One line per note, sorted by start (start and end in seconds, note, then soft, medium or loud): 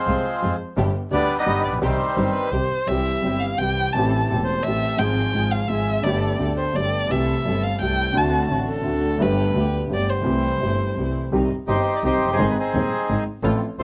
0.00 0.56 F3 soft
0.00 0.56 G#3 soft
0.00 0.56 C4 medium
0.00 0.55 C5 medium
0.06 0.21 C2 soft
0.06 0.21 C2 medium
0.06 0.22 C3 soft
0.06 0.21 F3 soft
0.06 0.21 G#3 soft
0.06 0.21 C4 soft
0.06 0.22 C4 soft
0.06 0.22 F4 soft
0.06 0.22 G#4 soft
0.41 0.57 F2 medium
0.41 0.57 F2 soft
0.41 0.56 F3 soft
0.41 0.56 G#3 soft
0.41 0.57 G#3 soft
0.41 0.56 C4 soft
0.41 0.57 C4 soft
0.41 0.57 F4 soft
0.41 0.57 G#4 soft
0.76 0.92 G1 medium
0.76 0.91 G2 medium
0.76 0.91 D3 medium
0.76 0.91 G3 medium
0.76 0.91 B3 medium
0.76 0.91 D4 medium
0.76 0.92 G4 medium
1.11 1.26 D2 medium
1.11 1.27 D2 medium
1.11 1.26 D3 soft
1.11 1.26 G3 soft
1.11 1.37 G3 medium
1.11 1.26 B3 soft
1.11 1.27 B3 soft
1.11 1.37 B3 medium
1.11 1.27 D4 soft
1.11 1.39 D4 medium
1.11 1.26 G4 soft
1.11 1.27 G4 soft
1.11 1.37 D5 medium
1.38 1.79 G3 medium
1.38 1.79 B3 medium
1.38 1.63 D#4 medium
1.38 1.63 D#5 medium
1.46 1.61 G1 medium
1.46 1.61 G1 soft
1.46 1.61 G2 medium
1.46 1.61 D3 soft
1.46 1.61 G3 soft
1.46 1.61 B3 soft
1.46 1.62 B3 soft
1.46 1.62 D4 soft
1.46 1.61 G4 soft
1.46 1.62 G4 soft
1.63 1.81 A#1 soft
1.63 1.74 D4 medium
1.63 1.73 D5 medium
1.67 1.72 A1 soft
1.72 1.77 A#1 medium
1.78 1.82 B1 medium
1.78 1.97 C2 medium
1.78 1.96 C3 medium
1.78 1.96 D#3 medium
1.78 1.97 G3 medium
1.78 1.97 C4 medium
1.82 2.50 D#3 medium
1.82 2.49 G3 medium
1.82 1.97 C4 medium
1.82 2.50 C4 medium
1.82 1.97 D#4 medium
1.82 1.97 G4 medium
1.82 2.32 C5 medium
2.16 2.32 G1 medium
2.16 2.32 G2 soft
2.16 2.32 D#3 soft
2.16 2.32 G3 soft
2.16 2.32 C4 soft
2.16 2.32 D#4 soft
2.16 2.32 G4 soft
2.34 2.53 B4 medium
2.52 2.68 C2 soft
2.52 2.68 C2 medium
2.52 2.68 C3 soft
2.52 2.67 D#3 soft
2.52 2.68 G3 soft
2.52 2.68 C4 soft
2.52 2.68 D#4 soft
2.52 2.68 G4 soft
2.52 2.89 C5 medium
2.86 3.22 C2 medium
2.86 3.22 C3 medium
2.86 3.20 E3 soft
2.86 3.22 G3 soft
2.86 3.22 C4 medium
2.86 3.22 C4 soft
2.86 3.22 E4 medium
2.86 3.22 G4 medium
2.86 3.42 E5 medium
2.91 3.23 G4 medium
3.21 3.57 G1 soft
3.21 3.57 G2 soft
3.21 3.56 E3 soft
3.21 3.57 G3 soft
3.21 3.57 C4 soft
3.21 3.57 E4 soft
3.21 3.57 G4 soft
3.26 3.58 G4 soft
3.40 3.60 F5 medium
3.58 3.92 C2 medium
3.58 3.92 C2 soft
3.58 3.93 C3 soft
3.58 3.92 E3 soft
3.58 3.92 G3 soft
3.58 3.92 C4 soft
3.58 3.93 C4 soft
3.58 3.92 E4 soft
3.58 3.92 G4 soft
3.58 3.94 G5 loud
3.62 3.94 G4 soft
3.93 4.28 A1 medium
3.93 4.27 E3 medium
3.93 4.28 A3 soft
3.93 4.27 C4 medium
3.93 4.27 G4 medium
3.93 4.27 A4 medium
3.93 4.28 A5 medium
3.97 4.29 A1 medium
3.97 4.29 A2 medium
3.97 4.29 C4 soft
3.97 4.29 G4 medium
4.28 4.63 E1 soft
4.28 4.63 E2 soft
4.28 4.62 E3 soft
4.28 4.63 A3 soft
4.28 4.62 C4 soft
4.28 4.62 G4 soft
4.28 4.62 A4 soft
4.33 4.64 C4 soft
4.33 4.64 G4 soft
4.45 4.64 C5 medium
4.63 4.98 A1 soft
4.63 4.98 A1 medium
4.63 4.98 A2 soft
4.63 4.97 E3 soft
4.63 4.98 A3 soft
4.63 4.97 C4 soft
4.63 4.98 C4 soft
4.63 4.97 G4 soft
4.63 4.97 A4 soft
4.63 5.00 E5 loud
4.68 4.99 G4 soft
4.97 5.32 G#1 medium
4.97 5.32 G#2 medium
4.97 5.31 F3 medium
4.97 5.32 G#3 soft
4.97 5.32 C4 medium
4.97 5.32 C4 soft
4.97 5.32 F4 medium
4.97 5.32 G#4 medium
4.97 5.33 G#4 medium
4.97 5.53 G5 medium
5.32 5.67 G#1 soft
5.32 5.68 G#1 soft
5.32 5.67 G#2 soft
5.32 5.66 F3 soft
5.32 5.67 G#3 soft
5.32 5.67 C4 soft
5.32 5.67 F4 soft
5.32 5.67 G#4 soft
5.36 5.68 G#4 soft
5.51 5.70 F5 medium
5.67 6.02 G#1 soft
5.67 6.02 G#1 medium
5.67 6.03 G#2 soft
5.67 6.01 F3 soft
5.67 6.02 G#3 soft
5.67 6.02 C4 soft
5.67 6.03 C4 soft
5.67 6.03 F4 soft
5.67 6.03 G#4 soft
5.67 6.05 E5 medium
5.71 6.03 G#4 soft
6.02 6.37 G1 medium
6.02 6.38 G2 medium
6.02 6.35 D3 medium
6.02 6.37 A3 medium
6.02 6.38 B3 medium
6.02 6.37 B3 medium
6.02 6.38 G4 medium
6.02 6.38 A4 medium
6.02 6.39 D5 medium
6.07 6.39 G4 medium
6.38 6.72 D2 soft
6.38 6.73 D2 medium
6.38 6.71 D3 soft
6.38 6.72 A3 soft
6.38 6.73 B3 soft
6.38 6.73 G4 soft
6.38 6.73 A4 soft
6.58 6.77 C5 medium
6.72 7.08 G1 medium
6.72 7.08 G1 soft
6.72 7.08 G2 soft
6.72 7.07 D3 soft
6.72 7.07 A3 soft
6.72 7.08 B3 soft
6.72 7.09 B3 soft
6.72 7.09 G4 soft
6.72 7.09 A4 soft
6.72 7.12 D5 medium
6.77 7.09 G4 soft
7.07 7.43 C2 medium
7.07 7.43 C3 medium
7.07 7.42 E3 medium
7.07 7.43 A3 soft
7.07 7.44 C4 soft
7.07 7.44 C4 medium
7.07 7.44 E4 medium
7.07 7.44 A4 medium
7.07 7.65 E5 medium
7.11 7.44 G4 medium
7.44 7.79 G1 medium
7.44 7.79 G1 soft
7.44 7.79 G2 soft
7.44 7.78 E3 soft
7.44 7.78 A3 soft
7.44 7.79 C4 soft
7.44 7.79 E4 soft
7.44 7.80 G4 soft
7.44 7.79 A4 soft
7.64 7.81 F5 medium
7.79 8.13 C2 medium
7.79 8.14 C2 soft
7.79 8.14 C3 soft
7.79 8.13 E3 soft
7.79 8.13 A3 soft
7.79 8.13 C4 soft
7.79 8.14 C4 soft
7.79 8.14 E4 soft
7.79 8.15 G4 soft
7.79 8.14 A4 soft
7.79 8.19 G5 medium
8.13 8.48 D2 medium
8.13 8.49 D2 medium
8.13 8.14 D3 medium
8.13 8.46 D3 medium
8.13 8.48 A3 medium
8.13 8.48 C4 medium
8.13 8.49 C4 medium
8.13 8.48 D4 medium
8.13 8.49 F#4 medium
8.17 8.50 F#4 medium
8.17 8.51 A5 medium
8.48 8.83 A1 medium
8.48 8.84 A1 soft
8.48 8.83 A2 soft
8.48 8.80 D3 soft
8.48 8.82 A3 soft
8.48 8.83 C4 soft
8.48 8.84 C4 soft
8.48 8.84 D4 soft
8.48 8.84 F#4 soft
8.70 9.24 A4 medium
8.82 9.17 D2 soft
8.82 9.18 D2 medium
8.82 8.83 D3 soft
8.82 9.16 D3 soft
8.82 9.17 A3 soft
8.82 9.18 C4 soft
8.82 9.19 D4 soft
8.82 9.19 F#4 soft
9.18 9.53 G1 medium
9.18 9.54 G1 medium
9.18 9.53 G2 medium
9.18 9.52 D3 medium
9.18 9.53 A3 medium
9.18 9.53 B3 medium
9.18 9.54 B3 medium
9.18 9.53 G4 medium
9.22 9.54 G4 medium
9.22 9.74 B4 medium
9.53 9.88 D2 medium
9.53 9.88 D2 soft
9.53 9.86 D3 soft
9.53 9.87 A3 soft
9.53 9.89 A3 soft
9.53 9.88 B3 soft
9.53 9.89 B3 soft
9.53 9.89 G4 soft
9.87 10.23 G1 soft
9.87 10.23 G1 medium
9.87 10.24 G2 soft
9.87 10.22 D3 soft
9.87 10.22 A3 soft
9.87 10.23 A3 soft
9.87 10.23 B3 soft
9.87 10.24 B3 soft
9.87 10.24 G4 soft
9.92 10.24 G4 soft
9.92 10.11 D5 medium
10.09 11.15 C5 medium
10.21 10.58 C2 medium
10.21 10.58 C3 medium
10.21 10.57 E3 medium
10.21 10.58 A3 soft
10.21 10.58 C4 medium
10.25 10.59 C2 medium
10.25 10.59 A3 medium
10.25 10.59 C4 medium
10.25 10.59 E4 medium
10.25 10.59 G4 medium
10.58 10.94 G1 soft
10.58 10.95 G1 medium
10.58 10.95 G2 soft
10.58 10.93 E3 soft
10.58 10.94 A3 soft
10.58 10.95 A3 soft
10.58 10.95 C4 soft
10.58 10.95 E4 soft
10.63 10.96 G4 soft
10.95 11.31 C2 medium
10.95 11.31 C2 soft
10.95 11.31 C3 soft
10.95 11.30 E3 soft
10.95 11.31 A3 soft
10.95 11.31 C4 soft
10.95 11.31 E4 soft
10.99 11.31 G4 soft
11.32 11.47 C2 medium
11.32 11.47 C3 medium
11.32 11.47 D#3 medium
11.32 11.47 G3 medium
11.32 11.47 C4 medium
11.32 11.48 C4 medium
11.32 11.48 D#4 medium
11.32 11.47 G4 medium
11.67 11.83 G1 medium
11.67 11.83 G2 soft
11.67 11.83 D#3 soft
11.67 11.83 G3 soft
11.67 11.83 C4 soft
11.67 12.04 D#4 medium
11.67 11.83 D#4 soft
11.67 12.03 G4 medium
11.67 11.83 G4 soft
11.67 11.93 C5 medium
11.96 11.99 D5 medium
12.03 12.18 C2 medium
12.03 12.18 C2 soft
12.03 12.18 C3 soft
12.03 12.18 D#3 soft
12.03 12.18 G3 soft
12.03 12.18 C4 soft
12.03 12.18 D#4 soft
12.03 12.31 D#4 medium
12.03 12.19 G4 soft
12.03 12.37 G4 medium
12.03 12.29 C5 medium
12.22 12.38 F#1 soft
12.26 12.30 F1 soft
12.30 12.34 F#1 medium
12.30 12.58 D#4 medium
12.30 12.58 G#4 medium
12.30 12.49 C5 medium
12.35 12.39 G1 medium
12.35 12.53 G#1 medium
12.35 12.53 D#3 medium
12.35 12.53 G#3 medium
12.35 12.53 C4 medium
12.39 12.54 G#1 medium
12.39 12.54 G#2 medium
12.39 12.54 G#3 medium
12.39 12.53 C4 medium
12.39 12.54 D#4 medium
12.39 12.54 G#4 medium
12.51 12.57 B4 medium
12.59 13.24 C4 soft
12.59 13.24 D#4 soft
12.59 13.24 G#4 medium
12.74 12.89 D#1 soft
12.74 12.88 D#2 medium
12.74 12.89 D#2 soft
12.74 12.89 D#3 soft
12.74 12.89 G#3 soft
12.74 12.89 C4 soft
12.74 12.89 D#4 soft
12.74 12.89 G#4 soft
13.09 13.24 G#1 soft
13.09 13.24 G#1 medium
13.09 13.24 G#2 medium
13.09 13.24 D#3 soft
13.09 13.24 G#3 soft
13.09 13.24 C4 soft
13.09 13.24 D#4 soft
13.09 13.24 G#4 soft
13.43 13.58 A1 medium
13.43 13.58 A2 medium
13.43 13.58 F3 medium
13.43 13.58 A3 medium
13.43 13.58 C4 medium
13.43 13.59 F4 medium
13.43 13.58 A4 medium
13.79 13.83 A1 medium
13.79 13.83 A2 medium
13.79 13.83 F3 soft
13.79 13.83 A3 soft
13.79 13.83 C4 soft
13.79 13.83 F4 soft
13.79 13.83 A4 soft
13.79 13.83 A4 medium
13.79 13.83 C5 medium